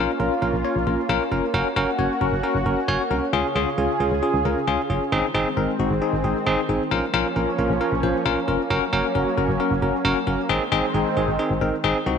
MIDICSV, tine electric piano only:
0, 0, Header, 1, 2, 480
1, 0, Start_track
1, 0, Tempo, 447761
1, 1652, Time_signature, 4, 2, 24, 8
1, 13060, End_track
2, 0, Start_track
2, 0, Title_t, "Tine electric piano"
2, 0, Program_c, 0, 4
2, 0, Note_on_c, 0, 61, 111
2, 0, Note_on_c, 0, 65, 100
2, 0, Note_on_c, 0, 70, 120
2, 112, Note_off_c, 0, 65, 0
2, 112, Note_off_c, 0, 70, 0
2, 113, Note_off_c, 0, 61, 0
2, 213, Note_on_c, 0, 61, 83
2, 213, Note_on_c, 0, 65, 80
2, 213, Note_on_c, 0, 70, 92
2, 353, Note_off_c, 0, 61, 0
2, 353, Note_off_c, 0, 65, 0
2, 353, Note_off_c, 0, 70, 0
2, 451, Note_on_c, 0, 61, 89
2, 451, Note_on_c, 0, 70, 93
2, 452, Note_on_c, 0, 65, 79
2, 592, Note_off_c, 0, 61, 0
2, 592, Note_off_c, 0, 65, 0
2, 592, Note_off_c, 0, 70, 0
2, 693, Note_on_c, 0, 61, 83
2, 693, Note_on_c, 0, 65, 76
2, 693, Note_on_c, 0, 73, 92
2, 833, Note_off_c, 0, 61, 0
2, 833, Note_off_c, 0, 65, 0
2, 833, Note_off_c, 0, 73, 0
2, 931, Note_on_c, 0, 61, 82
2, 931, Note_on_c, 0, 65, 74
2, 931, Note_on_c, 0, 70, 88
2, 1072, Note_off_c, 0, 61, 0
2, 1072, Note_off_c, 0, 65, 0
2, 1072, Note_off_c, 0, 70, 0
2, 1171, Note_on_c, 0, 65, 101
2, 1172, Note_on_c, 0, 61, 108
2, 1172, Note_on_c, 0, 70, 121
2, 1312, Note_off_c, 0, 61, 0
2, 1312, Note_off_c, 0, 65, 0
2, 1312, Note_off_c, 0, 70, 0
2, 1411, Note_on_c, 0, 65, 81
2, 1412, Note_on_c, 0, 61, 86
2, 1412, Note_on_c, 0, 70, 94
2, 1552, Note_off_c, 0, 65, 0
2, 1552, Note_off_c, 0, 70, 0
2, 1553, Note_off_c, 0, 61, 0
2, 1650, Note_on_c, 0, 61, 110
2, 1650, Note_on_c, 0, 66, 101
2, 1650, Note_on_c, 0, 70, 121
2, 1792, Note_off_c, 0, 61, 0
2, 1792, Note_off_c, 0, 66, 0
2, 1792, Note_off_c, 0, 70, 0
2, 1890, Note_on_c, 0, 70, 121
2, 1891, Note_on_c, 0, 66, 104
2, 1892, Note_on_c, 0, 61, 109
2, 2032, Note_off_c, 0, 66, 0
2, 2032, Note_off_c, 0, 70, 0
2, 2033, Note_off_c, 0, 61, 0
2, 2130, Note_on_c, 0, 61, 85
2, 2130, Note_on_c, 0, 66, 77
2, 2130, Note_on_c, 0, 73, 96
2, 2271, Note_off_c, 0, 66, 0
2, 2272, Note_off_c, 0, 61, 0
2, 2272, Note_off_c, 0, 73, 0
2, 2371, Note_on_c, 0, 61, 84
2, 2371, Note_on_c, 0, 66, 80
2, 2371, Note_on_c, 0, 70, 97
2, 2512, Note_off_c, 0, 61, 0
2, 2512, Note_off_c, 0, 66, 0
2, 2512, Note_off_c, 0, 70, 0
2, 2610, Note_on_c, 0, 61, 85
2, 2610, Note_on_c, 0, 66, 79
2, 2610, Note_on_c, 0, 70, 97
2, 2752, Note_off_c, 0, 61, 0
2, 2752, Note_off_c, 0, 66, 0
2, 2752, Note_off_c, 0, 70, 0
2, 2850, Note_on_c, 0, 61, 81
2, 2850, Note_on_c, 0, 66, 76
2, 2851, Note_on_c, 0, 70, 90
2, 2992, Note_off_c, 0, 61, 0
2, 2992, Note_off_c, 0, 66, 0
2, 2992, Note_off_c, 0, 70, 0
2, 3091, Note_on_c, 0, 61, 104
2, 3091, Note_on_c, 0, 66, 100
2, 3091, Note_on_c, 0, 73, 120
2, 3232, Note_off_c, 0, 61, 0
2, 3232, Note_off_c, 0, 66, 0
2, 3232, Note_off_c, 0, 73, 0
2, 3332, Note_on_c, 0, 61, 85
2, 3332, Note_on_c, 0, 66, 79
2, 3332, Note_on_c, 0, 70, 95
2, 3473, Note_off_c, 0, 61, 0
2, 3473, Note_off_c, 0, 66, 0
2, 3473, Note_off_c, 0, 70, 0
2, 3572, Note_on_c, 0, 61, 112
2, 3572, Note_on_c, 0, 65, 104
2, 3572, Note_on_c, 0, 68, 120
2, 3712, Note_off_c, 0, 65, 0
2, 3713, Note_off_c, 0, 61, 0
2, 3713, Note_off_c, 0, 68, 0
2, 3813, Note_on_c, 0, 61, 106
2, 3813, Note_on_c, 0, 65, 100
2, 3813, Note_on_c, 0, 68, 118
2, 3953, Note_off_c, 0, 61, 0
2, 3953, Note_off_c, 0, 65, 0
2, 3953, Note_off_c, 0, 68, 0
2, 4051, Note_on_c, 0, 61, 85
2, 4051, Note_on_c, 0, 68, 93
2, 4052, Note_on_c, 0, 65, 78
2, 4192, Note_off_c, 0, 61, 0
2, 4192, Note_off_c, 0, 65, 0
2, 4192, Note_off_c, 0, 68, 0
2, 4292, Note_on_c, 0, 61, 88
2, 4292, Note_on_c, 0, 65, 75
2, 4292, Note_on_c, 0, 68, 92
2, 4433, Note_off_c, 0, 61, 0
2, 4433, Note_off_c, 0, 65, 0
2, 4433, Note_off_c, 0, 68, 0
2, 4531, Note_on_c, 0, 61, 84
2, 4531, Note_on_c, 0, 68, 95
2, 4532, Note_on_c, 0, 65, 76
2, 4672, Note_off_c, 0, 61, 0
2, 4672, Note_off_c, 0, 65, 0
2, 4672, Note_off_c, 0, 68, 0
2, 4773, Note_on_c, 0, 61, 85
2, 4773, Note_on_c, 0, 65, 74
2, 4773, Note_on_c, 0, 70, 89
2, 4913, Note_off_c, 0, 61, 0
2, 4913, Note_off_c, 0, 65, 0
2, 4913, Note_off_c, 0, 70, 0
2, 5012, Note_on_c, 0, 65, 97
2, 5012, Note_on_c, 0, 68, 120
2, 5013, Note_on_c, 0, 61, 107
2, 5153, Note_off_c, 0, 61, 0
2, 5153, Note_off_c, 0, 65, 0
2, 5153, Note_off_c, 0, 68, 0
2, 5252, Note_on_c, 0, 61, 85
2, 5252, Note_on_c, 0, 65, 77
2, 5252, Note_on_c, 0, 68, 92
2, 5393, Note_off_c, 0, 61, 0
2, 5393, Note_off_c, 0, 65, 0
2, 5393, Note_off_c, 0, 68, 0
2, 5492, Note_on_c, 0, 60, 107
2, 5492, Note_on_c, 0, 63, 101
2, 5492, Note_on_c, 0, 68, 121
2, 5633, Note_off_c, 0, 60, 0
2, 5633, Note_off_c, 0, 63, 0
2, 5633, Note_off_c, 0, 68, 0
2, 5731, Note_on_c, 0, 60, 108
2, 5731, Note_on_c, 0, 63, 101
2, 5731, Note_on_c, 0, 68, 116
2, 5872, Note_off_c, 0, 60, 0
2, 5872, Note_off_c, 0, 63, 0
2, 5872, Note_off_c, 0, 68, 0
2, 5971, Note_on_c, 0, 63, 77
2, 5971, Note_on_c, 0, 70, 92
2, 5972, Note_on_c, 0, 60, 84
2, 6112, Note_off_c, 0, 63, 0
2, 6112, Note_off_c, 0, 70, 0
2, 6113, Note_off_c, 0, 60, 0
2, 6212, Note_on_c, 0, 60, 82
2, 6212, Note_on_c, 0, 63, 78
2, 6213, Note_on_c, 0, 66, 95
2, 6353, Note_off_c, 0, 60, 0
2, 6353, Note_off_c, 0, 63, 0
2, 6353, Note_off_c, 0, 66, 0
2, 6451, Note_on_c, 0, 68, 91
2, 6452, Note_on_c, 0, 60, 83
2, 6452, Note_on_c, 0, 63, 78
2, 6592, Note_off_c, 0, 60, 0
2, 6592, Note_off_c, 0, 68, 0
2, 6593, Note_off_c, 0, 63, 0
2, 6692, Note_on_c, 0, 60, 82
2, 6692, Note_on_c, 0, 63, 74
2, 6692, Note_on_c, 0, 68, 93
2, 6833, Note_off_c, 0, 60, 0
2, 6833, Note_off_c, 0, 63, 0
2, 6833, Note_off_c, 0, 68, 0
2, 6931, Note_on_c, 0, 63, 102
2, 6932, Note_on_c, 0, 60, 110
2, 6932, Note_on_c, 0, 68, 124
2, 7072, Note_off_c, 0, 60, 0
2, 7072, Note_off_c, 0, 63, 0
2, 7073, Note_off_c, 0, 68, 0
2, 7172, Note_on_c, 0, 68, 95
2, 7173, Note_on_c, 0, 60, 87
2, 7173, Note_on_c, 0, 63, 77
2, 7313, Note_off_c, 0, 60, 0
2, 7313, Note_off_c, 0, 63, 0
2, 7313, Note_off_c, 0, 68, 0
2, 7412, Note_on_c, 0, 61, 112
2, 7412, Note_on_c, 0, 65, 101
2, 7412, Note_on_c, 0, 70, 118
2, 7553, Note_off_c, 0, 61, 0
2, 7553, Note_off_c, 0, 65, 0
2, 7553, Note_off_c, 0, 70, 0
2, 7651, Note_on_c, 0, 61, 112
2, 7652, Note_on_c, 0, 65, 105
2, 7652, Note_on_c, 0, 70, 124
2, 7792, Note_off_c, 0, 61, 0
2, 7792, Note_off_c, 0, 65, 0
2, 7792, Note_off_c, 0, 70, 0
2, 7891, Note_on_c, 0, 70, 95
2, 7892, Note_on_c, 0, 61, 84
2, 7892, Note_on_c, 0, 65, 80
2, 8032, Note_off_c, 0, 70, 0
2, 8033, Note_off_c, 0, 61, 0
2, 8033, Note_off_c, 0, 65, 0
2, 8132, Note_on_c, 0, 61, 85
2, 8132, Note_on_c, 0, 65, 81
2, 8132, Note_on_c, 0, 70, 94
2, 8273, Note_off_c, 0, 61, 0
2, 8273, Note_off_c, 0, 65, 0
2, 8273, Note_off_c, 0, 70, 0
2, 8371, Note_on_c, 0, 61, 86
2, 8371, Note_on_c, 0, 65, 77
2, 8371, Note_on_c, 0, 70, 93
2, 8512, Note_off_c, 0, 61, 0
2, 8512, Note_off_c, 0, 65, 0
2, 8512, Note_off_c, 0, 70, 0
2, 8610, Note_on_c, 0, 61, 86
2, 8610, Note_on_c, 0, 65, 78
2, 8610, Note_on_c, 0, 72, 92
2, 8752, Note_off_c, 0, 61, 0
2, 8752, Note_off_c, 0, 65, 0
2, 8752, Note_off_c, 0, 72, 0
2, 8849, Note_on_c, 0, 61, 109
2, 8849, Note_on_c, 0, 70, 122
2, 8850, Note_on_c, 0, 65, 101
2, 8991, Note_off_c, 0, 61, 0
2, 8991, Note_off_c, 0, 70, 0
2, 8992, Note_off_c, 0, 65, 0
2, 9090, Note_on_c, 0, 61, 86
2, 9090, Note_on_c, 0, 65, 78
2, 9090, Note_on_c, 0, 70, 94
2, 9232, Note_off_c, 0, 61, 0
2, 9232, Note_off_c, 0, 65, 0
2, 9232, Note_off_c, 0, 70, 0
2, 9331, Note_on_c, 0, 61, 112
2, 9331, Note_on_c, 0, 66, 103
2, 9331, Note_on_c, 0, 70, 127
2, 9472, Note_off_c, 0, 61, 0
2, 9472, Note_off_c, 0, 66, 0
2, 9472, Note_off_c, 0, 70, 0
2, 9570, Note_on_c, 0, 61, 113
2, 9571, Note_on_c, 0, 70, 122
2, 9572, Note_on_c, 0, 66, 100
2, 9712, Note_off_c, 0, 61, 0
2, 9712, Note_off_c, 0, 70, 0
2, 9713, Note_off_c, 0, 66, 0
2, 9810, Note_on_c, 0, 61, 85
2, 9810, Note_on_c, 0, 70, 95
2, 9811, Note_on_c, 0, 66, 79
2, 9952, Note_off_c, 0, 61, 0
2, 9952, Note_off_c, 0, 66, 0
2, 9952, Note_off_c, 0, 70, 0
2, 10051, Note_on_c, 0, 61, 89
2, 10051, Note_on_c, 0, 66, 80
2, 10051, Note_on_c, 0, 70, 94
2, 10192, Note_off_c, 0, 61, 0
2, 10192, Note_off_c, 0, 66, 0
2, 10192, Note_off_c, 0, 70, 0
2, 10289, Note_on_c, 0, 61, 87
2, 10289, Note_on_c, 0, 70, 95
2, 10290, Note_on_c, 0, 66, 81
2, 10431, Note_off_c, 0, 61, 0
2, 10431, Note_off_c, 0, 70, 0
2, 10432, Note_off_c, 0, 66, 0
2, 10531, Note_on_c, 0, 61, 82
2, 10531, Note_on_c, 0, 70, 90
2, 10532, Note_on_c, 0, 66, 78
2, 10672, Note_off_c, 0, 61, 0
2, 10672, Note_off_c, 0, 66, 0
2, 10672, Note_off_c, 0, 70, 0
2, 10770, Note_on_c, 0, 61, 108
2, 10770, Note_on_c, 0, 66, 100
2, 10770, Note_on_c, 0, 70, 124
2, 10912, Note_off_c, 0, 61, 0
2, 10912, Note_off_c, 0, 66, 0
2, 10912, Note_off_c, 0, 70, 0
2, 11010, Note_on_c, 0, 61, 86
2, 11010, Note_on_c, 0, 66, 79
2, 11010, Note_on_c, 0, 70, 94
2, 11151, Note_off_c, 0, 66, 0
2, 11152, Note_off_c, 0, 61, 0
2, 11152, Note_off_c, 0, 70, 0
2, 11249, Note_on_c, 0, 60, 116
2, 11249, Note_on_c, 0, 63, 104
2, 11249, Note_on_c, 0, 68, 124
2, 11391, Note_off_c, 0, 60, 0
2, 11391, Note_off_c, 0, 63, 0
2, 11391, Note_off_c, 0, 68, 0
2, 11489, Note_on_c, 0, 60, 112
2, 11489, Note_on_c, 0, 63, 99
2, 11490, Note_on_c, 0, 68, 124
2, 11631, Note_off_c, 0, 60, 0
2, 11631, Note_off_c, 0, 63, 0
2, 11632, Note_off_c, 0, 68, 0
2, 11731, Note_on_c, 0, 60, 89
2, 11731, Note_on_c, 0, 63, 81
2, 11731, Note_on_c, 0, 68, 93
2, 11872, Note_off_c, 0, 60, 0
2, 11872, Note_off_c, 0, 63, 0
2, 11872, Note_off_c, 0, 68, 0
2, 11971, Note_on_c, 0, 60, 87
2, 11971, Note_on_c, 0, 63, 79
2, 11971, Note_on_c, 0, 68, 100
2, 12112, Note_off_c, 0, 60, 0
2, 12112, Note_off_c, 0, 63, 0
2, 12112, Note_off_c, 0, 68, 0
2, 12212, Note_on_c, 0, 60, 86
2, 12212, Note_on_c, 0, 63, 77
2, 12212, Note_on_c, 0, 68, 96
2, 12353, Note_off_c, 0, 60, 0
2, 12353, Note_off_c, 0, 63, 0
2, 12353, Note_off_c, 0, 68, 0
2, 12450, Note_on_c, 0, 70, 93
2, 12451, Note_on_c, 0, 60, 82
2, 12451, Note_on_c, 0, 63, 78
2, 12592, Note_off_c, 0, 60, 0
2, 12592, Note_off_c, 0, 63, 0
2, 12592, Note_off_c, 0, 70, 0
2, 12692, Note_on_c, 0, 60, 116
2, 12692, Note_on_c, 0, 63, 105
2, 12692, Note_on_c, 0, 68, 124
2, 12832, Note_off_c, 0, 60, 0
2, 12832, Note_off_c, 0, 63, 0
2, 12833, Note_off_c, 0, 68, 0
2, 12932, Note_on_c, 0, 60, 87
2, 12932, Note_on_c, 0, 63, 81
2, 12933, Note_on_c, 0, 66, 94
2, 13060, Note_off_c, 0, 60, 0
2, 13060, Note_off_c, 0, 63, 0
2, 13060, Note_off_c, 0, 66, 0
2, 13060, End_track
0, 0, End_of_file